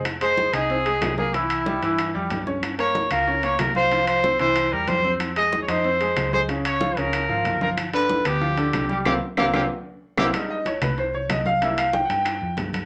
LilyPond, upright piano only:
\new Staff \with { instrumentName = "Upright piano" } { \time 4/4 \key c \phrygian \tempo 4 = 187 r8 <aes aes'>4 <ees' ees''>8 <c' c''>8 <aes aes'>4 <bes bes'>8 | <e e'>4 <g g'>8 <e e'>4 <g g'>4 <des' des''>8~ | <des' des''>8 <bes bes'>4 <f' f''>8 <des' des''>8 <bes bes'>4 <f' f''>8 | <f f'>4 <c' c''>8 <e e'>4 <g g'>4 <c' c''>8~ |
<c' c''>8 <aes aes'>4 <ees' ees''>8 <c' c''>8 <aes aes'>4 <aes aes'>8 | <des des'>4 <f f'>8 <des des'>4 <f f'>4 <f f'>8~ | <f f'>8 <d d'>4 <b b'>8 <f f'>8 <d d'>4 <g g'>8 | <bes c' f'>8 r8 <bes c' f'>8 <bes c' f'>8 r4. <bes c' e'>8 |
<g aes ees'>8 ees''8 des''8 b'8 c''8 des''8 ees''8 f''8 | <g bes e' e''>8 f''8 g''8 <ges'' g''>4. r4 | }